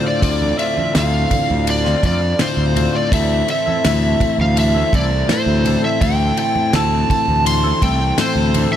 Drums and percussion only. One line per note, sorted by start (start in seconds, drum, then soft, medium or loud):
0.22 kick medium
0.22 ride medium
0.42 high conga medium
0.59 ride medium
0.78 high conga medium
0.95 snare loud
0.95 ride medium
0.95 low conga medium
1.31 kick medium
1.31 ride medium
1.31 high conga medium
1.31 low conga medium
1.50 high conga medium
1.67 ride medium
1.85 snare soft
2.03 kick medium
2.03 ride medium
2.03 high conga medium
2.03 low conga medium
2.39 snare loud
2.39 ride medium
2.76 ride medium
2.76 low conga medium
3.12 kick loud
3.12 ride medium
3.48 ride medium
3.68 high conga medium
3.85 snare medium
3.85 ride medium
3.85 low conga medium
4.20 kick medium
4.20 ride medium
4.20 low conga medium
4.39 high conga medium
4.57 ride medium
4.93 kick medium
4.93 ride medium
4.93 high conga medium
4.93 low conga medium
5.29 snare loud
5.29 ride medium
5.65 ride medium
5.65 low conga medium
6.01 kick loud
6.01 ride medium
6.37 ride medium
6.56 high conga medium
6.73 snare medium
6.73 ride medium
6.73 low conga medium
7.10 kick medium
7.10 ride medium
7.10 low conga medium
7.28 high conga medium
7.46 ride medium
7.82 kick medium
7.82 ride medium
7.82 high conga medium
7.82 low conga medium
8.18 snare medium
8.18 ride medium
8.54 ride medium
8.54 low conga medium